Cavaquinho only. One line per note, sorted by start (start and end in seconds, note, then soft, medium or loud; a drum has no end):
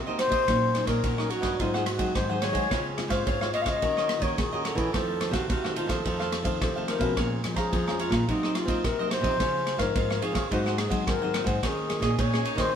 0.07 0.18 A#4 medium
0.07 0.19 C5 medium
0.07 0.19 D#5 medium
0.19 0.32 F#4 soft
0.19 0.32 A#4 medium
0.19 0.31 C5 medium
0.19 0.30 D#5 medium
0.31 0.46 A#4 medium
0.31 0.46 C5 medium
0.31 0.45 D#5 medium
0.48 0.74 F#4 medium
0.48 0.74 A#4 medium
0.48 0.74 C#5 medium
0.48 0.75 D#5 medium
0.75 muted cavaquinho stroke soft
0.87 1.02 A#4 medium
0.87 1.02 C#5 medium
0.87 1.01 D#5 medium
1.04 1.16 F#4 soft
1.04 1.17 A#4 medium
1.04 1.17 C#5 medium
1.04 1.17 D#5 medium
1.18 1.29 A#4 soft
1.18 1.30 C#5 medium
1.18 1.30 D#5 medium
1.29 1.43 F#4 medium
1.29 1.43 A#4 medium
1.29 1.42 C#5 medium
1.29 1.41 D#5 medium
1.42 1.58 A#4 medium
1.42 1.57 C#5 medium
1.42 1.57 D#5 medium
1.59 1.72 D#4 medium
1.59 1.73 G#4 medium
1.59 1.73 C5 medium
1.59 1.73 F#5 medium
1.74 1.85 G#4 medium
1.74 1.86 C5 medium
1.74 1.86 F#5 medium
1.86 muted cavaquinho stroke soft
1.98 2.28 G#4 medium
1.98 2.27 C5 medium
1.98 2.27 F#5 medium
2.29 2.41 G#4 medium
2.29 2.42 C5 medium
2.29 2.42 F#5 medium
2.42 2.55 D#4 medium
2.42 2.56 G#4 medium
2.42 2.55 C5 medium
2.42 2.54 F#5 medium
2.55 2.70 G#4 medium
2.55 2.69 C5 medium
2.55 2.69 F#5 medium
2.71 2.96 F4 soft
2.71 2.97 C5 soft
2.71 2.97 C#5 medium
2.71 2.97 F5 medium
2.98 muted cavaquinho stroke soft
3.10 3.25 C5 medium
3.10 3.25 C#5 medium
3.10 3.24 F5 medium
3.26 3.39 F4 medium
3.26 3.40 C5 medium
3.26 3.40 C#5 soft
3.26 3.40 F5 medium
3.41 3.53 C5 medium
3.41 3.54 C#5 medium
3.41 3.54 F5 medium
3.53 3.67 F4 medium
3.53 3.67 C5 medium
3.53 3.65 C#5 medium
3.53 3.64 F5 medium
3.66 3.81 C5 medium
3.66 3.81 C#5 medium
3.66 3.80 F5 medium
3.82 3.95 F#4 medium
3.82 3.96 A#4 medium
3.82 3.96 C#5 medium
3.82 3.96 D#5 medium
3.97 4.08 A#4 medium
3.97 4.08 C#5 medium
3.97 4.09 D#5 medium
4.09 muted cavaquinho stroke soft
4.21 4.51 A#4 medium
4.21 4.50 C#5 medium
4.21 4.50 D#5 medium
4.52 4.64 A#4 medium
4.52 4.64 C#5 medium
4.52 4.65 D#5 medium
4.64 4.78 F#4 medium
4.64 4.78 A#4 medium
4.64 4.77 C#5 medium
4.64 4.76 D#5 medium
4.77 4.92 A#4 medium
4.77 4.92 C#5 medium
4.77 4.91 D#5 medium
4.93 5.19 D#4 medium
4.93 5.19 A4 medium
4.93 5.19 C5 medium
4.93 5.20 F5 medium
5.20 muted cavaquinho stroke soft
5.33 5.48 A4 medium
5.33 5.48 C5 medium
5.33 5.47 F5 medium
5.49 5.62 D#4 medium
5.49 5.63 A4 soft
5.49 5.63 C5 medium
5.49 5.62 F5 medium
5.64 5.75 A4 medium
5.64 5.76 C5 medium
5.64 5.77 F5 medium
5.76 5.90 D#4 medium
5.76 5.89 A4 medium
5.76 5.88 C5 medium
5.76 5.87 F5 medium
5.89 6.04 A4 medium
5.89 6.04 C5 medium
5.89 6.03 F5 medium
6.05 6.18 D#4 medium
6.05 6.18 A4 medium
6.05 6.19 C5 medium
6.05 6.18 F5 medium
6.19 6.31 A4 medium
6.19 6.31 C5 medium
6.19 6.32 F5 medium
6.32 muted cavaquinho stroke soft
6.44 6.74 A4 medium
6.44 6.73 C5 medium
6.44 6.73 F5 medium
6.76 6.87 A4 medium
6.76 6.88 C5 medium
6.76 6.88 F5 medium
6.88 7.01 D#4 medium
6.88 7.02 A4 soft
6.88 7.00 C5 medium
6.88 6.99 F5 medium
7.00 7.16 A4 medium
7.00 7.15 C5 medium
7.00 7.15 F5 medium
7.17 7.43 G#4 medium
7.17 7.43 C#5 medium
7.17 7.43 F5 medium
7.17 7.44 A#5 medium
7.44 muted cavaquinho stroke soft
7.56 7.71 C#5 medium
7.56 7.71 F5 medium
7.56 7.70 A#5 medium
7.73 7.86 G#4 soft
7.73 7.86 C#5 soft
7.73 7.87 F5 medium
7.73 7.86 A#5 soft
7.87 7.99 C#5 soft
7.87 7.99 F5 medium
7.87 8.00 A#5 medium
7.99 8.13 G#4 medium
7.99 8.13 C#5 medium
7.99 8.12 F5 medium
7.99 8.11 A#5 medium
8.12 8.27 C#5 medium
8.12 8.27 F5 medium
8.12 8.26 A#5 medium
8.29 8.42 F#4 medium
8.29 8.42 A#4 medium
8.29 8.42 C5 medium
8.29 8.42 D#5 medium
8.43 8.55 A#4 medium
8.43 8.55 C5 medium
8.43 8.56 D#5 medium
8.56 muted cavaquinho stroke soft
8.68 8.97 A#4 medium
8.68 8.97 C5 medium
8.68 8.96 D#5 medium
8.99 9.10 A#4 medium
8.99 9.11 C5 medium
8.99 9.12 D#5 medium
9.11 9.24 F#4 medium
9.11 9.25 A#4 soft
9.11 9.23 C5 medium
9.11 9.22 D#5 medium
9.23 9.39 A#4 medium
9.23 9.38 C5 medium
9.23 9.38 D#5 medium
9.40 9.65 F4 medium
9.40 9.66 C5 medium
9.40 9.66 C#5 medium
9.40 9.66 F5 medium
9.67 muted cavaquinho stroke soft
9.78 9.94 C5 medium
9.78 9.94 C#5 medium
9.78 9.93 F5 medium
9.95 10.08 F4 medium
9.95 10.09 C5 medium
9.95 10.09 C#5 medium
9.95 10.09 F5 medium
10.10 10.21 C5 medium
10.10 10.22 C#5 medium
10.10 10.23 F5 medium
10.22 10.36 F4 medium
10.22 10.36 C5 medium
10.22 10.35 C#5 medium
10.22 10.34 F5 medium
10.35 10.50 C5 medium
10.35 10.50 C#5 medium
10.35 10.49 F5 medium
10.51 10.64 D#4 medium
10.51 10.64 G#4 medium
10.51 10.65 C5 medium
10.51 10.64 F#5 medium
10.66 10.77 G#4 medium
10.66 10.77 C5 medium
10.66 10.78 F#5 medium
10.78 muted cavaquinho stroke soft
10.90 11.19 G#4 medium
10.90 11.19 C5 medium
10.90 11.18 F#5 medium
11.22 11.33 G#4 medium
11.22 11.34 C5 medium
11.22 11.34 F#5 medium
11.34 11.47 D#4 soft
11.34 11.47 G#4 medium
11.34 11.46 C5 medium
11.34 11.45 F#5 medium
11.46 11.61 G#4 medium
11.46 11.61 C5 medium
11.46 11.60 F#5 medium
11.63 11.88 D#4 soft
11.63 11.88 G#4 soft
11.63 11.89 C#5 medium
11.63 11.89 D#5 medium
11.89 muted cavaquinho stroke soft
12.02 12.17 G#4 medium
12.02 12.17 C#5 medium
12.02 12.16 D#5 medium
12.18 12.31 D#4 medium
12.18 12.32 G#4 medium
12.18 12.32 C#5 medium
12.18 12.32 D#5 medium
12.33 12.44 G#4 medium
12.33 12.45 C#5 medium
12.33 12.45 D#5 medium
12.45 12.58 D#4 medium
12.45 12.58 G#4 medium
12.45 12.57 C#5 medium
12.45 12.56 D#5 medium
12.57 12.73 G#4 medium
12.57 12.72 C#5 medium
12.57 12.72 D#5 medium